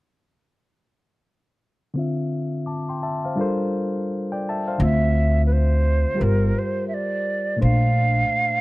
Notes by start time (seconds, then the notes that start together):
1.94 D3 C4 F4
1.99 E5
2.66 A5 D6
2.89 G5 C6
3.03 E5 A5
3.25 C5 F5
3.36 G3 D4 F4 A4
3.40 A#4 C5
4.32 D5 G5
4.49 E5 A5
4.68 C5 F5
4.78 D2 D3 C4 F4
4.83 E5
5.46 B4
5.53 C5
6.14 G3 F4 G4
6.19 G1 A#4 C5
6.59 C5
6.88 E5
6.94 D5
7.56 A#2 A3 D4
7.62 A#1 C5 F5